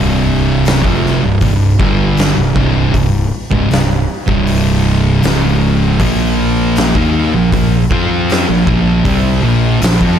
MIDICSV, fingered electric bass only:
0, 0, Header, 1, 2, 480
1, 0, Start_track
1, 0, Key_signature, -3, "minor"
1, 0, Tempo, 763359
1, 1851, Time_signature, 4, 2, 24, 8
1, 6407, End_track
2, 0, Start_track
2, 0, Title_t, "Fingered electric bass"
2, 0, Program_c, 0, 33
2, 0, Note_on_c, 0, 24, 89
2, 507, Note_off_c, 0, 24, 0
2, 533, Note_on_c, 0, 29, 97
2, 755, Note_off_c, 0, 29, 0
2, 770, Note_on_c, 0, 24, 79
2, 882, Note_off_c, 0, 24, 0
2, 890, Note_on_c, 0, 24, 77
2, 1114, Note_off_c, 0, 24, 0
2, 1132, Note_on_c, 0, 31, 96
2, 1466, Note_off_c, 0, 31, 0
2, 1492, Note_on_c, 0, 24, 81
2, 1603, Note_off_c, 0, 24, 0
2, 1608, Note_on_c, 0, 24, 95
2, 1833, Note_off_c, 0, 24, 0
2, 1851, Note_on_c, 0, 24, 78
2, 2074, Note_off_c, 0, 24, 0
2, 2212, Note_on_c, 0, 25, 94
2, 2324, Note_off_c, 0, 25, 0
2, 2333, Note_on_c, 0, 24, 78
2, 2555, Note_off_c, 0, 24, 0
2, 2692, Note_on_c, 0, 24, 89
2, 3267, Note_off_c, 0, 24, 0
2, 3298, Note_on_c, 0, 25, 83
2, 3750, Note_off_c, 0, 25, 0
2, 3770, Note_on_c, 0, 34, 91
2, 4346, Note_off_c, 0, 34, 0
2, 4371, Note_on_c, 0, 39, 96
2, 4594, Note_off_c, 0, 39, 0
2, 4614, Note_on_c, 0, 34, 79
2, 4724, Note_off_c, 0, 34, 0
2, 4734, Note_on_c, 0, 34, 80
2, 4955, Note_off_c, 0, 34, 0
2, 4971, Note_on_c, 0, 41, 104
2, 5305, Note_off_c, 0, 41, 0
2, 5341, Note_on_c, 0, 34, 77
2, 5448, Note_off_c, 0, 34, 0
2, 5452, Note_on_c, 0, 34, 95
2, 5674, Note_off_c, 0, 34, 0
2, 5696, Note_on_c, 0, 36, 92
2, 5916, Note_off_c, 0, 36, 0
2, 5926, Note_on_c, 0, 34, 104
2, 6151, Note_off_c, 0, 34, 0
2, 6173, Note_on_c, 0, 34, 94
2, 6283, Note_off_c, 0, 34, 0
2, 6293, Note_on_c, 0, 41, 98
2, 6403, Note_off_c, 0, 41, 0
2, 6407, End_track
0, 0, End_of_file